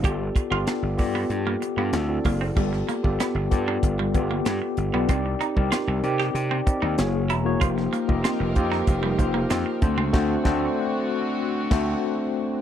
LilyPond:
<<
  \new Staff \with { instrumentName = "Tine electric piano" } { \time 4/4 \key g \minor \tempo 4 = 95 << { r1 | r1 | r2 r8 ees''16 g''16 gis''8 ais''8 | r1 |
r1 | } \\ { <b f' g' a' d''>8 r16 <b f' g' a' d''>8 r16 <b f' g' a' d''>8. r8 <b f' g' a' f''>16 <c' e' fis' a' d''>16 <c' e' fis' a' d''>8 r16 | <b f' g' a' d''>8 r16 <b f' g' a' d''>8 r16 <b f' g' a' d''>8 r8 <b f' g' a' d''>8. r8 <b f' g' a' d''>16 | <c' ees' g' bes' d''>8 r16 <c' ees' g' bes' d''>8 r16 <c' ees' g' bes' d''>8 r8 <c' ees' g' bes' d''>8 <ais e' fis' gis' cis''>8 r16 <ais e' fis' gis' cis''>16 | <bes ees' f' g' c''>8 r16 <bes ees' f' g' ees''>8 r16 <bes ees' f' g' c''>8 r8 <bes ees' f' g' c''>8. r16 <a c' d' fis' c''>8 |
<a c' d' fis' c''>8 <a c' d' fis' c''>8 r4. <a c' d' fis' c''>8 r4 | } >> }
  \new Staff \with { instrumentName = "String section" } { \time 4/4 \key g \minor r1 | r1 | r1 | <f ees' g' bes'>2.~ <f ees' g' bes'>8 <d c' fis'>8~ |
<d c' fis'>1 | }
  \new Staff \with { instrumentName = "Clean electric guitar" } { \time 4/4 \key g \minor g'16 r8 f'16 d'16 r8 b16 r16 bes16 r16 b16 r8 bes16 c'16 | g16 r16 bes16 r16 b16 r8 d'16 r16 g16 r16 bes16 b16 r8 b16 | c'16 r16 ees'16 r16 f'16 r8 g'16 r16 c'16 r16 ees'16 r8 e'16 r16 | f'16 r16 bes16 r16 c'16 r8 ees'16 r16 g16 r16 bes16 c'16 r8 c'16 |
r1 | }
  \new Staff \with { instrumentName = "Slap bass" } { \clef bass \time 4/4 \key g \minor g,,8 r16 g,,16 r16 g,,16 g,8 g,8 r16 g,16 d,8 fis,,8 | g,,8 r16 g,,16 r16 g,,16 g,8 g,,8 g,,8 g,16 r16 g,,16 b,,16 | c,8 r16 c,16 r16 c,16 c8 c8 r16 ees,16 fis,,8 e,,8 | f,,8 r16 f,,16 r16 f,,16 f,8 f,,8 f,,8 f,16 r16 d,16 des,16 |
d,8 d,8 r4. d,8 r4 | }
  \new DrumStaff \with { instrumentName = "Drums" } \drummode { \time 4/4 <hh bd>8 <hh bd>8 <hh sn>8 <hho bd>8 hh8 hh8 <hh sn>8 <hho bd>8 | <cymc bd>16 sn16 hh16 bd16 <hh sn>8 <hh bd>8 <hh bd>8 <hh bd>8 <hh sn>8 hh8 | <hh bd>8 hh16 bd16 <hh sn>8 hh16 sn16 hh8 <hh bd>8 <hh sn>8 hh8 | <hh bd>16 sn16 hh16 bd16 <hh sn>8 <hh bd>16 sn16 <hh bd>8 <hh bd>8 <hh sn>8 <hh bd>8 |
<cymc bd sn>8 <bd sn>8 r4 r8 <cymc bd sn>8 r4 | }
>>